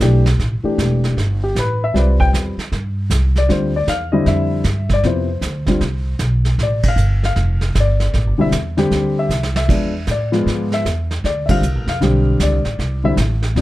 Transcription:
0.00 B1 E3 A3 D4 G4, kick, snare, hi-hat pedal
0.26 snare
0.39 A1, brush sweep, kick, snare
0.63 E3 A3 D4 G4, muted upright bass stroke
0.78 E1, kick, snare, hi-hat pedal
1.04 snare
1.17 G1, brush sweep, kick, snare
1.44 G4
1.55 A1 B4, kick, snare, hi-hat pedal
1.84 E5
1.94 C2 G3 C4 F4 B4, brush sweep, kick, snare
1.99 D5
2.20 G5, kick
2.33 E2, kick, snare, hi-hat pedal
2.57 muted upright bass stroke, snare
2.72 G2, brush sweep, kick, snare
3.10 C2, kick, snare, hi-hat pedal
3.36 D5, snare
3.49 D2 D3 G3 C4 F4 C5, brush sweep, kick, snare
3.76 D5
3.87 E2 F5, kick, snare, hi-hat pedal
4.12 D3 G3 C4 E4 D#5
4.26 F2 E5, brush sweep, kick, snare
4.64 G2, kick, snare, hi-hat pedal
4.89 kick, snare
4.93 D5
5.03 F2 C3 F3 B3 E4 C5, brush sweep, kick, snare
5.41 D2, kick, snare, hi-hat pedal
5.66 D3 G3 C4 F4, kick, snare
5.81 C2, brush sweep, kick, snare
6.19 B1, kick, snare, hi-hat pedal
6.45 snare
6.58 A1, brush sweep, kick, snare
6.63 D5
6.83 kick, ride
6.88 F5
6.96 G1, hi-hat pedal
7.23 F5, snare
7.36 F1, brush sweep, kick, snare
7.61 snare
7.75 G1, kick, snare, hi-hat pedal
7.80 D5
8.00 snare
8.14 A1, brush sweep, kick, snare
8.26 G1
8.38 E1 D3 G3 C4 E4 E5
8.52 E2, kick, snare, hi-hat pedal
8.77 D3 G3 C4 G4, snare
8.91 D2 C5, brush sweep, kick, snare
9.19 E5
9.29 C2, snare, hi-hat pedal
9.43 snare
9.56 E5, snare
9.68 E2 F3 G#3 B3 D4, brush sweep, kick, snare, crash
10.07 A2, kick, snare, hi-hat pedal
10.11 D5
10.32 F3 G#3 B3 F4, snare
10.46 G#2, brush sweep, kick, snare
10.72 E5, snare
10.85 E2, kick, snare, hi-hat pedal
11.11 snare
11.24 D2 D5, brush sweep, kick, snare
11.46 D3 G3 E5, kick, ride
11.50 C4 F4 F5
11.61 C2, hi-hat pedal
11.75 A1
11.87 F1 F5, snare
12.01 B1 D3 G3 C4 G4, brush sweep, kick, snare
12.40 C#2 D5, kick, snare, hi-hat pedal
12.51 C2
12.65 A1, snare
12.79 C2, brush sweep, kick, snare
13.04 D3 G3 C4 E4 E5
13.17 A1, kick, snare, hi-hat pedal
13.42 snare
13.55 E2 C3 B3 D4 F4, brush sweep, kick, snare

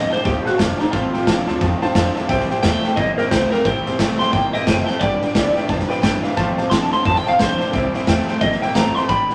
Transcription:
Already playing: F3 A3 C4 F4 D#5
0.10 F2 D3 C4 F4 A4 C5 F5 A5, snare
0.23 D2 F2 D#3 A3 C4 F4 G4 A4 C5 F5 G5, kick, snare
0.44 F2 D#3 C4 F4 F#4 A4 C5 F5 A5, muted upright bass stroke, snare
0.57 F1 F2 D3 F3 A3 C4 F4 A4 C5 F5 A5, kick, snare, hi-hat pedal
0.78 F2 D3 D#4 F4 A4 C5 F5 A5, muted upright bass stroke, snare
0.82 C4
0.91 F1 F2 C3 F3 A3 C4 F4 C5 F5 A5, kick, snare
0.95 A4
1.12 A1 F2 C3 F4 A4 C5 F5 G5, snare
1.16 C4
1.25 C2 F2 D3 F3 A3 C4 F4 A4 C5 F5 A5, kick, snare, hi-hat pedal
1.47 D2 F2 D3 C4 F4 A4 C5 F5 A5, snare
1.61 F2 D#3 A3 C4 F4 A4 C5 F5 A5, kick, snare
1.82 F2 D#3 C4 F4 A4 C5 F5 A5, snare
1.94 F2 D3 F3 A3 C4 F4 A4 C5 F5 A5, kick, snare, hi-hat pedal
2.15 F2 D3 C4 F4 A4 C5 F5 A5, muted upright bass stroke, snare
2.28 C2 C3 E3 G3 C4 E4 C5 E5 G5, kick, snare
2.32 C5
2.40 snare
2.49 C3 G3 C4 E4 C5 E5 G5, muted upright bass stroke, snare
2.63 E2 C3 E3 G3 A3 C4 E4 C5 E5 G5, kick, snare, hi-hat pedal
2.84 C3 G3 A3 C4 E4 C5 E5 A5, muted upright bass stroke, snare
2.96 A#1 C3 G3 A#3 C4 E4 C5 D#5 E5 G5, kick, snare
3.00 C5
3.18 C3 G3 A#3 C4 E4 A#4 C5 E5 G5, snare
3.31 C2 C3 E3 G3 A3 C4 E4 C5 E5 G5, kick, snare, hi-hat pedal
3.51 C3 G3 A3 C4 E4 A#4 C5 E5 G5, muted upright bass stroke, snare
3.64 C2 C3 E3 G3 C4 E4 C5 E5 G5, kick, snare
3.85 E2 C3 G3 C4 E4 C5 E5 G5, snare
3.99 G2 C3 E3 G3 A3 C4 E4 C5 E5 G5, kick, snare, hi-hat pedal
4.19 A2 C3 G3 A3 C4 E4 C5 E5 G5 C6, snare
4.33 C3 G3 A#3 C4 E4 C5 E5 G5, kick, snare
4.53 C3 G3 A#3 C4 E4 C5 D#5 E5 G5, muted upright bass stroke, snare
4.66 F#1 C3 E3 G3 A3 C4 E4 C5 E5 G5, kick, snare, hi-hat pedal
4.87 C3 G3 A3 C4 E4 C5 E5 G5, snare
5.00 G1 G2 D3 G3 D4 G4 B4 D5 G5, kick, snare
5.22 G2 D3 D4 G4 B4 D5 G5, muted upright bass stroke, snare
5.35 B1 G2 E3 G3 D4 G4 B4 D5 G5, kick, snare, hi-hat pedal
5.55 G2 E3 D4 G4 B4 D5 G5, muted upright bass stroke, snare
5.68 F1 G2 F3 G3 D4 G4 B4 D5 A5, kick, snare
5.80 snare
5.89 G2 F3 D4 G4 B4 D5 G5, snare
6.02 G1 G2 E3 G3 D4 G4 B4 D5 G5, kick, snare, hi-hat pedal
6.22 G2 E3 D4 G4 B4 D5 F5, muted upright bass stroke, snare
6.37 F1 F2 C3 F3 A3 C4 F4 C5 F5 A5, kick, snare
6.57 A1 F2 C3 C4 F4 C5 F5 A5, snare
6.70 C2 F2 D3 F3 A3 C4 F4 C5 F5 A5 C6, kick, snare, hi-hat pedal
6.82 A5
6.91 D2 F2 D3 C4 F4 C5 F5 A5 C6, snare
7.05 F2 D#3 A3 C4 F4 C5 F5 A5 C6, kick, snare
7.16 G5, snare
7.25 F2 D#3 F4 C5 F5 A5, muted upright bass stroke, snare
7.30 C4
7.39 B1 F2 D3 F3 A3 C4 F4 C5 F5 C6, kick, snare, hi-hat pedal
7.58 F2 D3 C5 F5 A5, muted upright bass stroke, snare
7.62 C4 F4
7.72 C2 C3 E3 G3 C4 E4 C5 E5 G5, kick, snare
7.94 C3 G3 C4 E4 C5 E5 G5, muted upright bass stroke, snare
8.07 E2 C3 E3 G3 A3 C4 E4 C5 E5 G5, kick, snare, hi-hat pedal
8.28 C3 G3 A3 C4 E4 C5 E5 G5, muted upright bass stroke, snare
8.41 A#1 C3 G3 A#3 C4 E4 C5 D#5 E5 G5, kick, snare
8.52 snare
8.61 C3 G3 A#3 C4 E4 C5 E5 G5, snare
8.74 A1 C3 E3 G3 A3 C4 E4 C5 E5 G5 A#5, kick, snare, hi-hat pedal
8.95 C3 G3 A3 C4 E4 C5 E5 G5 C6, snare
9.09 G1 G2 D3 G3 D4 G4 B4 D5 G5 B5, kick, snare
9.29 B1 G2 D3 G4 B4 D5 G5, snare

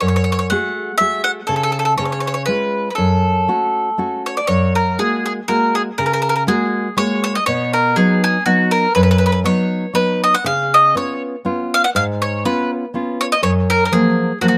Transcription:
0.00 F#2 C#5
0.08 C#5
0.16 C#5
0.24 C#5
0.32 C#5
0.39 C#5
0.50 A3 F#4 G#4 F#5
0.98 A3 F#4 G#4 E5
1.24 F#5
1.47 C#3 A4
1.56 A4
1.63 A4
1.72 A4
1.79 A4
1.85 A4
1.98 C#3 C#5
2.05 C#5
2.12 C#5
2.20 C#5
2.27 C#5
2.34 C#5
2.46 G#3 C#4 F4 B4
2.90 B4
2.95 F#2 A4
3.48 A3 C#4 F#4
3.98 A3 C#4 F#4
4.26 C#5
4.37 D5
4.47 F#2 C#5
4.75 A#4
4.99 G#3 A#3 F#4 G#4
5.26 G#4
5.48 G#3 A#3 F#4 A#4
5.75 G#4
5.98 C#3 A#4
6.06 A#4
6.13 A#4
6.22 A#4
6.29 A#4
6.36 A#4
6.47 G#3 A#3 F#4 G#4
6.97 G#3 A#3 F#4 C#5
7.24 C#5
7.35 D#5
7.46 B2 C#5
7.73 A#4
7.96 F#3 B3 D#4 G#4
8.24 G#4
8.46 F#3 B3 D#4 F#4
8.71 A#4
8.95 F#2 B4
9.03 B4
9.11 B4
9.18 B4
9.26 B4
9.32 B4
9.44 F#3 B3 D#4 C#5
9.94 F#3 B3 D#4 B4
10.24 D#5
10.34 F#5
10.44 C#3 F5
10.74 D#5
10.95 B3 C#4 F4 C#5
11.45 B3 C#4 F4
11.74 F5
11.84 F#5
11.95 G#2 F5
12.22 C#5
12.45 B3 C#4 F4 B4
12.94 B3 C#4 F4
13.21 C#5
13.32 D#5
13.43 F#2 C#5
13.70 A#4
13.85 A#4
13.92 F3 F#3 A#3 G#4
14.41 F3 F#3 A#3 F#4
14.48 F#4

